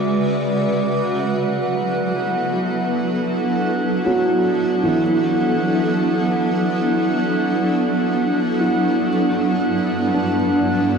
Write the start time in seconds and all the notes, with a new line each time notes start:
Already playing: C#3 G#3 F#4 B4 D5 E5 D6
0.94 F#3 F#5 F#6
1.17 A4
1.32 E4
1.39 B3
2.56 D4
4.06 F#3
4.83 E3
8.61 E4
9.08 G2
10.14 D4